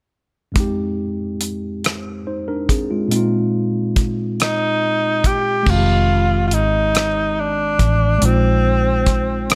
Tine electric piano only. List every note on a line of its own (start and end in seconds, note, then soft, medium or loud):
0.52 3.05 F2 medium
0.52 2.22 G#3 soft
0.56 2.23 C4 soft
0.56 2.24 D#4 medium
0.60 2.25 G4 medium
2.27 2.47 D#4 soft
2.27 2.47 C5 soft
2.48 2.68 D4 soft
2.48 2.68 A#4 medium
2.70 2.90 C4 soft
2.70 2.89 G#4 medium
2.91 3.09 G#3 soft
2.91 3.15 F4 soft
3.08 5.61 A#2 medium
3.08 5.62 G#3 medium
3.12 5.63 C4 medium
3.12 5.64 D#4 medium
3.16 5.65 F4 medium
5.63 8.16 G#3 medium
5.63 8.17 C4 soft
5.69 8.19 D#3 soft
5.69 5.75 F#4 soft
5.78 8.23 G4 medium
8.18 9.55 G#3 medium
8.18 9.55 C4 soft
8.23 9.55 D#4 soft
8.23 9.55 F4 medium